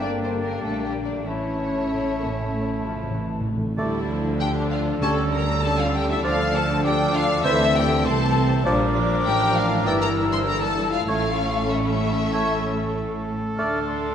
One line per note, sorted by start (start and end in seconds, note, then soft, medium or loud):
0.00 0.59 G1 medium
0.00 1.23 D3 soft
0.00 1.24 G3 soft
0.00 0.94 A#3 medium
0.00 1.23 A#3 soft
0.00 0.64 A#3 medium
0.00 0.98 D4 medium
0.00 0.09 D4 medium
0.00 1.23 D4 soft
0.00 0.10 D5 medium
0.00 1.22 G5 medium
0.22 0.30 C4 soft
0.22 0.32 C5 medium
0.43 0.63 A#3 soft
0.43 0.63 A#4 medium
0.62 1.25 A#1 soft
0.62 0.85 A3 medium
0.62 1.26 D4 soft
0.62 0.83 A4 medium
0.85 1.05 G3 soft
0.85 0.93 G4 soft
1.05 1.26 D4 soft
1.05 1.13 D5 soft
1.25 3.54 A1 soft
1.25 1.32 A2 soft
1.25 1.81 E3 soft
1.25 3.54 A3 soft
1.25 3.43 A3 soft
1.25 3.16 C#4 soft
1.25 3.47 C#4 soft
1.25 3.43 E4 soft
1.25 3.12 C#5 medium
1.25 3.42 A5 soft
1.33 1.40 A2 soft
1.41 1.48 A2 soft
1.49 1.56 A2 soft
1.57 1.63 A2 soft
1.64 1.70 A2 soft
1.72 1.78 A2 soft
1.79 1.85 A2 soft
1.86 1.93 A2 soft
1.86 2.18 A3 medium
1.94 2.01 A2 soft
2.02 2.09 A2 soft
2.10 2.17 A2 soft
2.18 2.25 A2 soft
2.18 2.28 A#3 soft
2.26 2.32 A2 soft
2.41 2.47 A2 soft
2.48 2.55 A2 soft
2.48 2.83 A3 medium
2.56 2.63 A2 soft
2.64 2.70 A2 soft
2.71 2.79 A2 medium
2.80 2.86 A2 medium
2.80 3.15 F3 soft
2.87 2.94 A2 medium
2.96 3.02 A2 medium
3.03 3.09 A2 medium
3.10 3.17 A2 medium
3.10 3.46 E3 soft
3.18 3.25 A2 medium
3.26 3.33 A2 medium
3.34 3.40 A2 medium
3.41 3.48 A2 medium
3.47 3.56 A2 medium
3.47 3.78 D3 soft
3.57 3.64 A2 medium
3.65 3.72 A2 medium
3.77 4.98 D2 medium
3.77 4.67 D3 medium
3.77 4.98 D3 medium
3.77 4.06 G3 medium
3.77 4.97 A3 medium
3.77 4.00 A3 medium
3.77 5.59 D4 medium
3.77 4.36 E4 medium
3.77 8.62 A4 medium
3.77 3.99 D5 medium
4.09 5.02 F3 medium
4.39 5.02 D4 medium
4.39 4.68 G4 medium
4.39 4.48 G5 medium
4.71 5.01 F4 medium
4.71 4.79 F5 medium
5.01 6.21 D2 medium
5.01 5.89 D3 medium
5.01 6.21 D3 medium
5.01 6.24 G3 medium
5.01 5.24 G3 medium
5.01 5.61 A3 medium
5.01 5.62 C#4 medium
5.01 5.32 A4 medium
5.01 5.23 C#5 medium
5.01 5.10 A5 loud
5.01 6.20 E6 medium
5.33 5.42 A#4 medium
5.33 5.63 A#5 medium
5.63 6.24 G3 medium
5.63 6.84 A3 medium
5.63 6.24 C#4 medium
5.63 5.70 A4 medium
5.63 5.78 A5 loud
5.79 5.94 F4 medium
5.79 5.94 F5 medium
5.95 6.09 G4 medium
5.95 6.09 G5 medium
6.10 6.25 E4 medium
6.10 6.24 E5 medium
6.22 7.42 D2 medium
6.22 7.42 D3 medium
6.22 7.44 F3 medium
6.22 6.45 F3 medium
6.22 7.45 F3 medium
6.22 7.42 D4 medium
6.22 6.33 F4 medium
6.22 6.45 D5 medium
6.22 6.54 F5 medium
6.22 6.82 F6 medium
6.55 6.63 A4 medium
6.55 6.85 A5 loud
6.82 7.45 D4 medium
6.82 6.93 G4 medium
6.82 7.14 G5 medium
6.82 7.42 D6 medium
7.15 7.23 F4 medium
7.15 7.45 F5 loud
7.43 8.04 D2 medium
7.43 8.31 D3 medium
7.43 8.04 D3 medium
7.43 8.65 E3 medium
7.43 7.66 E3 medium
7.43 8.04 A3 medium
7.43 8.65 C4 medium
7.43 8.04 C4 medium
7.43 7.74 E4 medium
7.43 7.65 C5 medium
7.43 7.74 E5 loud
7.43 8.05 E6 medium
7.75 8.05 G4 medium
7.75 8.06 G5 medium
8.04 8.66 C2 medium
8.04 8.66 C3 medium
8.04 8.65 A3 medium
8.04 8.65 C4 medium
8.04 8.65 A4 medium
8.04 8.66 A5 medium
8.04 8.66 C6 medium
8.64 9.25 A#1 medium
8.64 9.25 A#2 medium
8.64 8.87 F3 medium
8.64 9.87 F3 medium
8.64 8.96 G3 medium
8.64 9.86 D4 medium
8.64 10.91 D4 medium
8.64 10.76 A#4 medium
8.64 8.86 D5 medium
8.64 9.83 D6 medium
8.97 9.87 F3 medium
9.26 9.86 A1 medium
9.26 9.86 A2 medium
9.26 9.54 G4 medium
9.26 9.54 G5 medium
9.56 9.86 F4 medium
9.56 9.86 F5 medium
9.86 11.08 G1 medium
9.86 11.08 G2 medium
9.86 10.91 E3 medium
9.86 10.07 E3 medium
9.86 10.47 E3 medium
9.86 10.47 E4 medium
9.86 10.02 G4 medium
9.86 10.07 D5 medium
9.86 9.92 G5 loud
9.86 11.08 E6 medium
10.01 10.31 A#4 medium
10.01 10.10 A#5 medium
10.32 10.46 C5 medium
10.32 10.38 C6 medium
10.44 11.09 D3 medium
10.44 11.07 E4 medium
10.44 10.60 A#4 medium
10.44 10.62 A#5 loud
10.61 10.92 A4 medium
10.61 10.92 A5 medium
10.92 11.06 F4 medium
10.92 11.07 F5 medium
11.07 13.34 A1 medium
11.07 13.34 A2 medium
11.07 14.15 A3 medium
11.07 11.30 A3 medium
11.07 13.38 A3 medium
11.07 13.23 C#4 medium
11.07 13.39 C#4 medium
11.07 11.69 F4 medium
11.07 14.15 A4 medium
11.07 11.30 C#5 medium
11.07 11.69 F5 medium
11.07 13.24 C#6 medium
11.70 12.96 E4 medium
11.70 11.77 E5 medium
11.78 11.85 D5 soft
11.85 12.96 E5 medium
12.33 12.55 A3 medium
12.33 12.54 C#5 medium
13.57 14.15 D2 medium
13.57 14.15 D3 medium
13.57 14.15 A3 medium
13.57 13.79 A3 medium
13.57 14.15 D4 medium
13.57 13.80 D5 medium
13.57 13.86 F6 medium
13.87 14.15 C6 medium